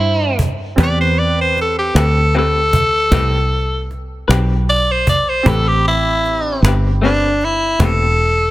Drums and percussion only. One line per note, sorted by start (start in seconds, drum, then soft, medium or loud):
0.39 cajon bass medium
0.78 cajon bass medium
1.57 cajon slap soft
1.96 cajon slap medium
2.73 cajon bass medium
3.12 cajon bass loud
3.91 cajon slap soft
4.31 cajon slap loud
5.07 cajon bass medium
5.46 cajon bass loud
6.24 cajon slap soft
6.65 cajon slap medium
7.41 cajon slap soft
7.80 cajon bass loud